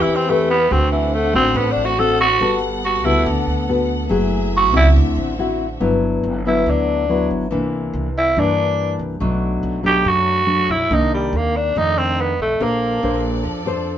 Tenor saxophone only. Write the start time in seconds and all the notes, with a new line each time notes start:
0.02 E4
0.16 C4
0.30 A3
0.50 B3
0.73 C4
0.92 E3
1.14 A3
1.36 C4
1.57 B3
1.72 D4
1.85 F#4
1.99 A4
2.21 F#4
2.85 F#4
3.05 E4
4.57 F#4
4.77 E4
6.47 E4
6.70 D4
8.18 E4
8.39 D4
9.87 G4
10.09 F#4
10.71 E4
10.95 D#4
11.14 G3
11.37 A#3
11.57 D4
11.78 D#4
11.99 C4
12.21 B3
12.42 A3
12.63 A#3